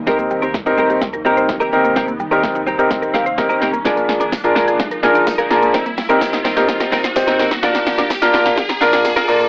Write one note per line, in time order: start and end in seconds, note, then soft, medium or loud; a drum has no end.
0.00 3.81 A#3 medium
0.00 riser medium
0.07 0.33 D#2 loud
0.07 3.81 C3 medium
0.07 3.81 D#3 medium
0.07 3.81 G3 medium
0.07 0.15 G3 loud
0.07 0.22 C4 medium
0.07 0.42 C4 medium
0.07 3.81 D#4 medium
0.07 0.42 D#4 medium
0.07 0.42 G4 medium
0.07 0.19 G4 medium
0.07 0.42 A#4 medium
0.07 0.18 A#4 medium
0.07 kick loud
0.07 snare medium
0.07 shaker medium
0.19 0.27 A#3 medium
0.19 muted clean electric guitar stroke soft
0.19 shaker medium
0.31 0.39 G3 medium
0.31 muted clean electric guitar stroke soft
0.31 shaker medium
0.42 0.60 D#2 medium
0.42 0.50 C4 medium
0.42 0.55 C4 medium
0.42 0.55 G4 medium
0.42 0.54 A#4 medium
0.42 shaker medium
0.54 kick loud
0.54 snare medium
0.54 shaker medium
0.66 1.60 D#2 medium
0.66 1.01 C4 loud
0.66 0.74 D#4 medium
0.66 1.01 D#4 medium
0.66 1.01 G4 medium
0.66 1.01 A#4 loud
0.66 muted clean electric guitar stroke soft
0.66 shaker medium
0.78 0.86 G3 medium
0.78 0.93 C4 medium
0.78 0.90 G4 medium
0.78 0.88 A#4 loud
0.78 shaker medium
0.90 0.98 G4 medium
0.90 muted clean electric guitar stroke soft
0.90 shaker medium
1.02 1.10 G3 medium
1.02 kick loud
1.02 snare medium
1.02 shaker medium
1.13 1.21 A#4 medium
1.13 muted clean electric guitar stroke soft
1.13 shaker medium
1.25 1.33 G3 medium
1.25 1.40 C4 medium
1.25 1.53 C4 medium
1.25 1.53 D#4 medium
1.25 1.53 G4 medium
1.25 1.37 G4 medium
1.25 1.53 A#4 medium
1.25 1.36 A#4 medium
1.25 shaker medium
1.37 1.45 C5 medium
1.37 muted clean electric guitar stroke soft
1.37 shaker medium
1.49 muted clean electric guitar stroke soft
1.49 kick loud
1.49 snare medium
1.49 shaker medium
1.60 1.71 C4 medium
1.60 1.72 G4 medium
1.60 1.73 A#4 medium
1.60 1.69 D#5 medium
1.60 shaker medium
1.72 1.84 C4 medium
1.72 2.07 C4 medium
1.72 2.07 D#4 medium
1.72 2.07 G4 medium
1.72 1.84 G4 medium
1.72 2.07 A#4 medium
1.72 1.83 A#4 medium
1.72 shaker medium
1.84 1.92 A#3 medium
1.84 muted clean electric guitar stroke medium
1.84 shaker medium
1.96 2.22 D#2 loud
1.96 2.04 G3 loud
1.96 2.11 C4 medium
1.96 2.08 G4 medium
1.96 2.06 A#4 loud
1.96 kick loud
1.96 snare medium
1.96 shaker medium
2.08 2.16 A#3 medium
2.08 muted clean electric guitar stroke soft
2.08 shaker soft
2.19 2.28 G3 medium
2.19 muted clean electric guitar stroke soft
2.19 shaker medium
2.31 2.49 D#2 medium
2.31 2.59 C4 medium
2.31 2.39 C4 medium
2.31 2.44 C4 soft
2.31 2.59 D#4 medium
2.31 2.59 G4 medium
2.31 2.44 G4 medium
2.31 2.43 A#4 medium
2.31 2.59 A#4 loud
2.31 shaker medium
2.43 kick loud
2.43 snare medium
2.43 shaker medium
2.55 3.49 D#2 medium
2.55 2.63 D#4 medium
2.55 muted clean electric guitar stroke soft
2.55 shaker medium
2.67 2.75 G3 medium
2.67 2.82 C4 medium
2.67 2.79 G4 medium
2.67 2.77 A#4 loud
2.67 shaker medium
2.79 3.13 C4 medium
2.79 3.13 D#4 medium
2.79 2.87 G4 medium
2.79 3.13 G4 medium
2.79 3.13 A#4 medium
2.79 muted clean electric guitar stroke medium
2.79 shaker medium
2.91 2.99 G3 medium
2.91 kick loud
2.91 snare medium
2.91 shaker medium
3.02 3.10 A#4 medium
3.02 muted clean electric guitar stroke soft
3.02 shaker medium
3.14 3.22 G3 medium
3.14 3.29 C4 medium
3.14 3.26 G4 medium
3.14 3.25 A#4 loud
3.14 3.36 F5 medium
3.14 snare medium
3.14 shaker medium
3.26 3.34 C5 medium
3.26 muted clean electric guitar stroke soft
3.26 shaker medium
3.38 3.65 C4 medium
3.38 3.65 D#4 medium
3.38 3.66 G4 medium
3.38 3.66 A#4 loud
3.38 3.60 G5 medium
3.38 muted clean electric guitar stroke medium
3.38 kick loud
3.38 snare medium
3.38 shaker medium
3.49 3.60 C4 soft
3.49 3.61 G4 medium
3.49 3.61 A#4 medium
3.49 3.58 D#5 medium
3.49 shaker medium
3.61 3.77 C4 medium
3.61 3.73 G4 medium
3.61 3.72 A#4 medium
3.61 3.83 A#5 medium
3.61 snare medium
3.61 shaker medium
3.73 3.81 A#3 medium
3.73 muted clean electric guitar stroke soft
3.73 shaker medium
3.85 4.11 A#1 loud
3.85 5.72 D3 medium
3.85 5.72 F3 medium
3.85 3.93 G#3 loud
3.85 5.72 G#3 medium
3.85 7.59 A#3 medium
3.85 4.00 D4 medium
3.85 4.20 D4 medium
3.85 4.20 F4 medium
3.85 5.72 F4 medium
3.85 4.20 G#4 medium
3.85 3.97 G#4 medium
3.85 4.20 A#4 medium
3.85 3.95 A#4 loud
3.85 kick loud
3.85 snare medium
3.85 closed hi-hat medium
3.85 shaker medium
3.97 4.05 A#3 medium
3.97 muted clean electric guitar stroke soft
3.97 closed hi-hat medium
3.97 shaker medium
4.08 4.17 G#3 medium
4.08 muted clean electric guitar stroke soft
4.08 snare medium
4.08 shaker medium
4.20 4.38 A#1 medium
4.20 4.28 D4 medium
4.20 4.33 D4 soft
4.20 4.33 G#4 medium
4.20 4.32 A#4 medium
4.20 closed hi-hat medium
4.20 shaker medium
4.32 kick loud
4.32 snare medium
4.32 closed hi-hat medium
4.32 tambourine medium
4.32 shaker medium
4.44 5.38 A#1 medium
4.44 4.79 D4 loud
4.44 4.79 F4 medium
4.44 4.52 F4 medium
4.44 4.79 G#4 medium
4.44 4.79 A#4 loud
4.44 muted clean electric guitar stroke soft
4.44 closed hi-hat medium
4.44 shaker medium
4.55 4.64 G#3 medium
4.55 4.71 D4 medium
4.55 4.68 G#4 medium
4.55 4.66 A#4 medium
4.55 snare medium
4.55 shaker medium
4.67 4.76 G#4 medium
4.67 muted clean electric guitar stroke soft
4.67 closed hi-hat medium
4.67 shaker medium
4.80 4.87 G#3 medium
4.80 kick loud
4.80 snare medium
4.80 closed hi-hat medium
4.80 shaker medium
4.91 4.99 A#4 medium
4.91 muted clean electric guitar stroke soft
4.91 closed hi-hat medium
4.91 shaker medium
5.03 5.11 G#3 medium
5.03 5.18 D4 medium
5.03 5.31 D4 medium
5.03 5.31 F4 medium
5.03 5.31 G#4 medium
5.03 5.15 G#4 medium
5.03 5.31 A#4 loud
5.03 5.14 A#4 medium
5.03 snare medium
5.03 shaker medium
5.15 5.23 D5 medium
5.15 muted clean electric guitar stroke soft
5.15 closed hi-hat medium
5.15 shaker medium
5.26 muted clean electric guitar stroke soft
5.26 kick loud
5.26 snare loud
5.26 closed hi-hat medium
5.26 tambourine medium
5.26 shaker medium
5.38 5.49 D4 medium
5.38 5.50 G#4 medium
5.38 5.51 A#4 medium
5.38 5.47 F5 medium
5.38 closed hi-hat medium
5.38 shaker medium
5.50 5.62 D4 medium
5.50 5.74 D4 medium
5.50 5.74 F4 medium
5.50 5.74 G#4 medium
5.50 5.62 G#4 medium
5.50 5.74 A#4 loud
5.50 5.61 A#4 medium
5.50 snare medium
5.50 shaker medium
5.62 5.70 A#3 medium
5.62 muted clean electric guitar stroke medium
5.62 closed hi-hat medium
5.62 shaker medium
5.74 6.00 C2 loud
5.74 7.61 C3 medium
5.74 7.61 D#3 medium
5.74 5.82 G3 medium
5.74 7.61 G3 medium
5.74 5.89 C4 medium
5.74 7.61 D#4 loud
5.74 5.86 D#4 loud
5.74 5.84 A#4 loud
5.74 kick loud
5.74 snare loud
5.74 closed hi-hat medium
5.74 shaker medium
5.86 5.94 A#3 medium
5.86 muted clean electric guitar stroke soft
5.86 closed hi-hat medium
5.86 shaker medium
5.97 6.06 G3 medium
5.97 muted clean electric guitar stroke soft
5.97 snare loud
5.97 open hi-hat medium
5.97 shaker medium
6.09 6.27 C2 medium
6.09 6.37 C4 medium
6.09 6.17 C4 medium
6.09 6.22 C4 medium
6.09 6.37 D#4 medium
6.09 6.22 D#4 medium
6.09 6.37 G4 medium
6.09 6.21 A#4 medium
6.09 6.37 A#4 loud
6.09 closed hi-hat medium
6.09 shaker medium
6.21 kick loud
6.21 snare loud
6.21 closed hi-hat medium
6.21 tambourine medium
6.21 shaker medium
6.33 7.27 C2 medium
6.33 6.41 D#4 medium
6.33 muted clean electric guitar stroke soft
6.33 snare loud
6.33 closed hi-hat medium
6.33 shaker medium
6.44 6.53 G3 medium
6.44 6.60 C4 medium
6.44 6.57 D#4 medium
6.44 6.55 A#4 medium
6.44 snare loud
6.44 open hi-hat medium
6.44 shaker medium
6.56 6.91 C4 medium
6.56 6.91 D#4 medium
6.56 6.65 G4 medium
6.56 6.91 G4 medium
6.56 6.91 A#4 loud
6.56 muted clean electric guitar stroke soft
6.56 snare loud
6.56 closed hi-hat medium
6.56 shaker medium
6.68 6.76 G3 medium
6.68 kick loud
6.68 snare loud
6.68 closed hi-hat medium
6.68 shaker medium
6.80 6.88 A#4 medium
6.80 muted clean electric guitar stroke soft
6.80 snare loud
6.80 closed hi-hat medium
6.80 shaker medium
6.92 7.00 G3 medium
6.92 7.07 C4 medium
6.92 7.04 D#4 medium
6.92 7.03 A#4 loud
6.92 snare loud
6.92 open hi-hat medium
6.92 shaker medium
7.04 7.12 C5 medium
7.04 snare loud
7.04 closed hi-hat medium
7.04 shaker medium
7.16 7.43 C4 medium
7.16 7.43 D#4 medium
7.16 7.43 G4 medium
7.16 7.44 C5 loud
7.16 muted clean electric guitar stroke soft
7.16 kick loud
7.16 snare loud
7.16 closed hi-hat medium
7.16 tambourine medium
7.16 shaker medium
7.27 7.38 C4 medium
7.27 7.39 D#4 medium
7.27 7.39 A#4 medium
7.27 7.36 D#5 medium
7.27 snare loud
7.27 closed hi-hat medium
7.27 shaker medium
7.39 7.55 C4 medium
7.39 7.51 D#4 medium
7.39 7.50 A#4 loud
7.39 snare loud
7.39 open hi-hat medium
7.39 shaker medium
7.51 7.59 A#3 medium
7.51 muted clean electric guitar stroke soft
7.51 snare loud
7.51 closed hi-hat medium
7.51 shaker medium
7.63 7.89 A#1 loud
7.63 9.49 A#2 medium
7.63 9.49 D3 medium
7.63 9.49 F3 medium
7.63 7.71 F3 loud
7.63 7.97 A#3 medium
7.63 7.78 D4 medium
7.63 7.97 D4 medium
7.63 9.49 D4 medium
7.63 7.98 F4 medium
7.63 9.49 F4 loud
7.63 7.75 F4 medium
7.63 7.98 A#4 medium
7.63 7.73 A#4 loud
7.63 kick loud
7.63 snare loud
7.63 closed hi-hat medium
7.63 shaker medium
7.75 7.83 A#3 medium
7.75 muted clean electric guitar stroke medium
7.75 snare loud
7.75 closed hi-hat medium
7.75 shaker medium
7.86 7.95 F3 medium
7.86 muted clean electric guitar stroke medium
7.86 snare loud
7.86 open hi-hat medium
7.86 shaker medium
7.98 8.16 A#1 medium
7.98 8.06 D4 medium
7.98 8.11 D4 medium
7.98 8.11 F4 medium
7.98 8.10 A#4 medium
7.98 snare loud
7.98 closed hi-hat medium
7.98 shaker medium
8.10 kick loud
8.10 snare loud
8.10 closed hi-hat medium
8.10 tambourine medium
8.10 shaker medium
8.22 9.16 A#1 medium
8.22 8.56 A#3 loud
8.22 8.57 D4 medium
8.22 8.57 F4 medium
8.22 8.30 F4 medium
8.22 8.57 A#4 loud
8.22 muted clean electric guitar stroke soft
8.22 snare loud
8.22 closed hi-hat medium
8.22 shaker medium
8.33 8.42 F3 medium
8.33 8.49 D4 medium
8.33 8.46 F4 medium
8.33 8.44 A#4 loud
8.33 snare loud
8.33 open hi-hat medium
8.33 shaker medium
8.45 8.54 F5 medium
8.45 muted clean electric guitar stroke soft
8.45 snare loud
8.45 closed hi-hat medium
8.45 shaker medium
8.57 8.65 F3 loud
8.57 kick loud
8.57 snare loud
8.57 closed hi-hat medium
8.57 shaker medium
8.69 8.77 A#5 medium
8.69 muted clean electric guitar stroke medium
8.69 snare loud
8.69 closed hi-hat medium
8.69 shaker medium
8.81 8.89 F3 medium
8.81 9.09 A#3 medium
8.81 8.96 D4 medium
8.81 9.09 D4 medium
8.81 9.09 F4 medium
8.81 8.93 F4 loud
8.81 9.09 A#4 loud
8.81 8.92 A#4 loud
8.81 snare loud
8.81 open hi-hat medium
8.81 shaker medium
8.93 9.01 D6 medium
8.93 muted clean electric guitar stroke medium
8.93 snare loud
8.93 closed hi-hat medium
8.93 shaker medium
9.05 muted clean electric guitar stroke soft
9.05 snare loud
9.05 closed hi-hat medium
9.05 tambourine medium
9.05 shaker medium
9.16 9.27 D4 medium
9.16 9.28 F4 medium
9.16 9.29 A#4 medium
9.16 9.24 F6 medium
9.16 snare loud
9.16 closed hi-hat medium
9.16 shaker medium
9.28 9.49 A#3 medium
9.28 9.40 D4 medium
9.28 9.49 D4 medium
9.28 9.49 F4 medium
9.28 9.40 F4 medium
9.28 9.49 A#4 loud
9.28 9.39 A#4 medium
9.28 open hi-hat medium
9.28 shaker medium
9.40 9.48 A#3 medium
9.40 muted clean electric guitar stroke soft
9.40 closed hi-hat medium
9.40 shaker medium